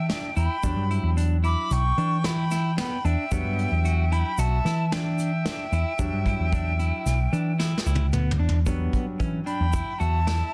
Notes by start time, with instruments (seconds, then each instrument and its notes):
Already playing: grand piano F#3 G3 D4
0.09 clean electric guitar D4, erhu E5, flute G5, snare, closed hi-hat
0.36 picked electric bass E2, clean electric guitar E4, erhu G5, flute B5, closed hi-hat, shaker
0.63 picked electric bass E2, grand piano F#3 G3 D4, clean electric guitar D4, kick, closed hi-hat, shaker
0.76 picked electric bass G2
0.90 clean electric guitar E4, closed hi-hat
1.03 picked electric bass E2
1.17 clean electric guitar D4, closed hi-hat, shaker
1.44 clean electric guitar E4, erhu B5, flute D6, closed hi-hat
1.71 picked electric bass B1, erhu G5, flute C#6, closed hi-hat, shaker
1.98 picked electric bass E3, clean electric guitar D4, closed hi-hat
2.24 clean electric guitar E4, erhu G5, flute B5, snare, closed hi-hat
2.51 clean electric guitar E4, snare, closed hi-hat, shaker
2.78 clean electric guitar B3, erhu G5, flute B5, snare, closed hi-hat
3.04 picked electric bass E2, clean electric guitar D4, erhu E5, flute G5, closed hi-hat, shaker
3.32 picked electric bass E2, grand piano F#3 G3 D4, clean electric guitar B3, kick, closed hi-hat, shaker
3.44 picked electric bass G2
3.58 closed hi-hat
3.71 picked electric bass E2
3.85 clean electric guitar F#4, closed hi-hat, shaker
4.12 clean electric guitar E4, erhu G5, flute B5, closed hi-hat
4.38 picked electric bass B1, clean electric guitar F#4, erhu E5, flute A5, closed hi-hat, shaker
4.65 picked electric bass E3, clean electric guitar E4, snare, closed hi-hat
4.92 clean electric guitar D4, erhu E5, flute G5, snare, closed hi-hat
5.19 closed hi-hat, shaker
5.46 clean electric guitar D4, snare, closed hi-hat
5.72 picked electric bass E2, clean electric guitar E4, closed hi-hat, shaker
5.99 picked electric bass E2, grand piano F#3 G3 D4, clean electric guitar D4, kick, closed hi-hat, shaker
6.12 picked electric bass G2
6.26 clean electric guitar E4, kick, closed hi-hat
6.39 picked electric bass E2
6.53 clean electric guitar D4, kick, closed hi-hat, shaker
6.79 clean electric guitar E4, closed hi-hat, shaker
7.06 picked electric bass B1, snare, closed hi-hat, shaker
7.33 picked electric bass E3, clean electric guitar D4, closed hi-hat, shaker
7.59 clean electric guitar E4, snare, shaker
7.78 snare
7.86 picked electric bass C#2, clean electric guitar E4, shaker
7.95 high tom
8.13 picked electric bass D2, clean electric guitar B3, mid tom, shaker
8.31 mid tom
8.39 picked electric bass E2, clean electric guitar D4
8.49 floor tom
8.66 picked electric bass E2, grand piano F#3 G3 D4, clean electric guitar B3, kick, closed hi-hat, shaker
8.93 kick, closed hi-hat, shaker
9.20 picked electric bass E3, clean electric guitar C#4, kick, closed hi-hat, shaker
9.46 clean electric guitar D4, erhu G5, flute B5, closed hi-hat
9.60 picked electric bass E2
9.73 clean electric guitar E4, kick, closed hi-hat, shaker
9.99 picked electric bass E2, clean electric guitar F#4, erhu E5, flute A5, closed hi-hat, shaker
10.27 clean electric guitar E4, snare, closed hi-hat